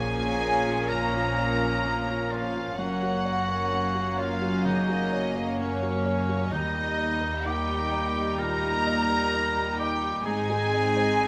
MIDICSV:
0, 0, Header, 1, 9, 480
1, 0, Start_track
1, 0, Tempo, 947867
1, 1409, Tempo, 934579
1, 1410, Time_signature, 4, 2, 24, 8
1, 5771, End_track
2, 0, Start_track
2, 0, Title_t, "Violin section"
2, 0, Program_c, 0, 48
2, 0, Note_on_c, 0, 80, 105
2, 445, Note_off_c, 0, 80, 0
2, 445, Note_on_c, 0, 82, 84
2, 1165, Note_on_c, 0, 77, 89
2, 1171, Note_off_c, 0, 82, 0
2, 1405, Note_on_c, 0, 78, 92
2, 1407, Note_off_c, 0, 77, 0
2, 2127, Note_off_c, 0, 78, 0
2, 2131, Note_on_c, 0, 77, 90
2, 2368, Note_on_c, 0, 75, 91
2, 2371, Note_off_c, 0, 77, 0
2, 2849, Note_off_c, 0, 75, 0
2, 2851, Note_on_c, 0, 73, 85
2, 3320, Note_off_c, 0, 73, 0
2, 3328, Note_on_c, 0, 75, 98
2, 3810, Note_off_c, 0, 75, 0
2, 3812, Note_on_c, 0, 79, 88
2, 4290, Note_on_c, 0, 82, 105
2, 4291, Note_off_c, 0, 79, 0
2, 5007, Note_on_c, 0, 79, 86
2, 5008, Note_off_c, 0, 82, 0
2, 5242, Note_off_c, 0, 79, 0
2, 5245, Note_on_c, 0, 80, 109
2, 5771, Note_off_c, 0, 80, 0
2, 5771, End_track
3, 0, Start_track
3, 0, Title_t, "Felt piano"
3, 0, Program_c, 1, 0
3, 0, Control_c, 1, 64, 127
3, 0, Note_on_c, 1, 34, 64
3, 0, Note_on_c, 1, 61, 43
3, 0, Note_on_c, 1, 65, 51
3, 0, Note_on_c, 1, 70, 44
3, 0, Note_on_c, 1, 73, 54
3, 92, Note_off_c, 1, 65, 0
3, 92, Note_on_c, 1, 65, 52
3, 164, Note_off_c, 1, 61, 0
3, 211, Note_off_c, 1, 73, 0
3, 211, Note_on_c, 1, 73, 51
3, 282, Note_off_c, 1, 65, 0
3, 334, Note_on_c, 1, 65, 48
3, 401, Note_off_c, 1, 73, 0
3, 429, Note_off_c, 1, 34, 0
3, 454, Note_on_c, 1, 41, 51
3, 522, Note_off_c, 1, 65, 0
3, 577, Note_on_c, 1, 65, 50
3, 643, Note_off_c, 1, 41, 0
3, 698, Note_on_c, 1, 73, 53
3, 765, Note_off_c, 1, 65, 0
3, 816, Note_off_c, 1, 70, 0
3, 816, Note_on_c, 1, 70, 47
3, 887, Note_off_c, 1, 73, 0
3, 936, Note_on_c, 1, 61, 52
3, 1007, Note_off_c, 1, 70, 0
3, 1053, Note_on_c, 1, 65, 52
3, 1127, Note_off_c, 1, 61, 0
3, 1175, Note_on_c, 1, 73, 39
3, 1244, Note_off_c, 1, 65, 0
3, 1298, Note_on_c, 1, 65, 42
3, 1364, Note_off_c, 1, 73, 0
3, 1411, Note_on_c, 1, 42, 59
3, 1413, Note_off_c, 1, 65, 0
3, 1420, Control_c, 1, 64, 0
3, 1504, Control_c, 1, 64, 127
3, 1533, Note_on_c, 1, 66, 48
3, 1650, Note_on_c, 1, 73, 55
3, 1723, Note_off_c, 1, 66, 0
3, 1768, Note_on_c, 1, 70, 47
3, 1841, Note_off_c, 1, 73, 0
3, 1887, Note_on_c, 1, 61, 49
3, 1960, Note_off_c, 1, 70, 0
3, 2008, Note_on_c, 1, 66, 49
3, 2080, Note_off_c, 1, 61, 0
3, 2125, Note_on_c, 1, 73, 47
3, 2201, Note_off_c, 1, 66, 0
3, 2247, Note_on_c, 1, 66, 53
3, 2320, Note_off_c, 1, 73, 0
3, 2350, Note_off_c, 1, 42, 0
3, 2368, Note_on_c, 1, 49, 58
3, 2441, Note_off_c, 1, 66, 0
3, 2490, Note_on_c, 1, 66, 59
3, 2562, Note_off_c, 1, 49, 0
3, 2611, Note_on_c, 1, 73, 61
3, 2682, Note_off_c, 1, 66, 0
3, 2731, Note_on_c, 1, 70, 58
3, 2802, Note_off_c, 1, 73, 0
3, 2853, Note_on_c, 1, 61, 56
3, 2922, Note_off_c, 1, 70, 0
3, 2971, Note_on_c, 1, 66, 50
3, 3043, Note_off_c, 1, 61, 0
3, 3086, Note_on_c, 1, 73, 47
3, 3161, Note_off_c, 1, 66, 0
3, 3209, Note_on_c, 1, 66, 51
3, 3280, Note_off_c, 1, 73, 0
3, 3326, Note_on_c, 1, 39, 69
3, 3329, Note_off_c, 1, 66, 0
3, 3338, Control_c, 1, 64, 0
3, 3411, Control_c, 1, 64, 127
3, 3445, Note_on_c, 1, 67, 52
3, 3563, Note_on_c, 1, 75, 55
3, 3640, Note_off_c, 1, 67, 0
3, 3682, Note_on_c, 1, 70, 49
3, 3759, Note_off_c, 1, 75, 0
3, 3803, Note_on_c, 1, 63, 54
3, 3879, Note_off_c, 1, 70, 0
3, 3927, Note_on_c, 1, 67, 53
3, 3999, Note_off_c, 1, 63, 0
3, 4050, Note_on_c, 1, 75, 48
3, 4121, Note_off_c, 1, 67, 0
3, 4167, Note_on_c, 1, 67, 51
3, 4242, Note_off_c, 1, 75, 0
3, 4269, Note_off_c, 1, 39, 0
3, 4284, Note_on_c, 1, 46, 55
3, 4361, Note_off_c, 1, 67, 0
3, 4406, Note_on_c, 1, 67, 60
3, 4479, Note_off_c, 1, 46, 0
3, 4532, Note_on_c, 1, 75, 61
3, 4599, Note_off_c, 1, 67, 0
3, 4652, Note_on_c, 1, 70, 53
3, 4722, Note_off_c, 1, 75, 0
3, 4775, Note_on_c, 1, 63, 58
3, 4842, Note_off_c, 1, 70, 0
3, 4893, Note_on_c, 1, 67, 54
3, 4963, Note_off_c, 1, 63, 0
3, 5013, Note_on_c, 1, 75, 47
3, 5082, Note_off_c, 1, 67, 0
3, 5133, Note_on_c, 1, 67, 55
3, 5202, Note_off_c, 1, 75, 0
3, 5250, Note_off_c, 1, 67, 0
3, 5254, Note_on_c, 1, 44, 72
3, 5257, Control_c, 1, 64, 0
3, 5354, Control_c, 1, 64, 127
3, 5371, Note_on_c, 1, 68, 53
3, 5492, Note_on_c, 1, 75, 58
3, 5561, Note_off_c, 1, 68, 0
3, 5612, Note_on_c, 1, 72, 57
3, 5682, Note_off_c, 1, 75, 0
3, 5734, Note_on_c, 1, 63, 56
3, 5771, Note_off_c, 1, 44, 0
3, 5771, Note_off_c, 1, 63, 0
3, 5771, Note_off_c, 1, 72, 0
3, 5771, End_track
4, 0, Start_track
4, 0, Title_t, "Clarinet"
4, 0, Program_c, 2, 71
4, 0, Note_on_c, 2, 68, 81
4, 448, Note_on_c, 2, 70, 76
4, 455, Note_off_c, 2, 68, 0
4, 1174, Note_on_c, 2, 65, 74
4, 1181, Note_off_c, 2, 70, 0
4, 1407, Note_off_c, 2, 65, 0
4, 1410, Note_on_c, 2, 66, 78
4, 2129, Note_on_c, 2, 65, 83
4, 2136, Note_off_c, 2, 66, 0
4, 2370, Note_on_c, 2, 63, 80
4, 2378, Note_off_c, 2, 65, 0
4, 2709, Note_off_c, 2, 63, 0
4, 2848, Note_on_c, 2, 61, 80
4, 3329, Note_on_c, 2, 63, 88
4, 3336, Note_off_c, 2, 61, 0
4, 3811, Note_on_c, 2, 67, 80
4, 3819, Note_off_c, 2, 63, 0
4, 4287, Note_on_c, 2, 70, 80
4, 4295, Note_off_c, 2, 67, 0
4, 5006, Note_off_c, 2, 70, 0
4, 5008, Note_on_c, 2, 67, 83
4, 5243, Note_off_c, 2, 67, 0
4, 5248, Note_on_c, 2, 68, 101
4, 5771, Note_off_c, 2, 68, 0
4, 5771, End_track
5, 0, Start_track
5, 0, Title_t, "Violin section"
5, 0, Program_c, 3, 48
5, 0, Note_on_c, 3, 58, 71
5, 0, Note_on_c, 3, 61, 70
5, 1392, Note_off_c, 3, 58, 0
5, 1392, Note_off_c, 3, 61, 0
5, 1411, Note_on_c, 3, 58, 66
5, 1412, Note_on_c, 3, 61, 64
5, 3309, Note_off_c, 3, 58, 0
5, 3310, Note_off_c, 3, 61, 0
5, 3329, Note_on_c, 3, 63, 66
5, 3330, Note_off_c, 3, 63, 0
5, 3330, Note_on_c, 3, 63, 64
5, 5227, Note_off_c, 3, 63, 0
5, 5254, Note_on_c, 3, 63, 64
5, 5255, Note_off_c, 3, 63, 0
5, 5255, Note_on_c, 3, 63, 76
5, 5771, Note_off_c, 3, 63, 0
5, 5771, End_track
6, 0, Start_track
6, 0, Title_t, "French horn section"
6, 0, Program_c, 4, 60
6, 0, Note_on_c, 4, 58, 60
6, 0, Note_on_c, 4, 61, 61
6, 1392, Note_off_c, 4, 58, 0
6, 1392, Note_off_c, 4, 61, 0
6, 1410, Note_on_c, 4, 61, 62
6, 1412, Note_on_c, 4, 58, 67
6, 3245, Note_off_c, 4, 58, 0
6, 3245, Note_off_c, 4, 61, 0
6, 3332, Note_on_c, 4, 63, 69
6, 3333, Note_on_c, 4, 55, 70
6, 5228, Note_off_c, 4, 63, 0
6, 5229, Note_off_c, 4, 55, 0
6, 5251, Note_on_c, 4, 63, 82
6, 5252, Note_on_c, 4, 60, 73
6, 5771, Note_off_c, 4, 60, 0
6, 5771, Note_off_c, 4, 63, 0
6, 5771, End_track
7, 0, Start_track
7, 0, Title_t, "Viola section"
7, 0, Program_c, 5, 48
7, 0, Note_on_c, 5, 53, 76
7, 0, Note_on_c, 5, 58, 68
7, 1394, Note_off_c, 5, 53, 0
7, 1394, Note_off_c, 5, 58, 0
7, 1415, Note_on_c, 5, 54, 77
7, 1417, Note_on_c, 5, 58, 69
7, 3311, Note_off_c, 5, 54, 0
7, 3312, Note_off_c, 5, 58, 0
7, 3331, Note_on_c, 5, 55, 77
7, 3331, Note_on_c, 5, 58, 77
7, 5228, Note_off_c, 5, 55, 0
7, 5228, Note_off_c, 5, 58, 0
7, 5251, Note_on_c, 5, 60, 86
7, 5254, Note_on_c, 5, 56, 74
7, 5771, Note_off_c, 5, 56, 0
7, 5771, Note_off_c, 5, 60, 0
7, 5771, End_track
8, 0, Start_track
8, 0, Title_t, "Cello section"
8, 0, Program_c, 6, 48
8, 0, Note_on_c, 6, 46, 61
8, 1392, Note_off_c, 6, 46, 0
8, 1410, Note_on_c, 6, 42, 66
8, 3308, Note_off_c, 6, 42, 0
8, 3328, Note_on_c, 6, 39, 66
8, 5247, Note_off_c, 6, 39, 0
8, 5250, Note_on_c, 6, 44, 74
8, 5771, Note_off_c, 6, 44, 0
8, 5771, End_track
9, 0, Start_track
9, 0, Title_t, "Double bass section"
9, 0, Program_c, 7, 48
9, 0, Note_on_c, 7, 34, 58
9, 1390, Note_off_c, 7, 34, 0
9, 1412, Note_on_c, 7, 30, 57
9, 3309, Note_off_c, 7, 30, 0
9, 3326, Note_on_c, 7, 39, 60
9, 5246, Note_off_c, 7, 39, 0
9, 5251, Note_on_c, 7, 32, 64
9, 5771, Note_off_c, 7, 32, 0
9, 5771, End_track
0, 0, End_of_file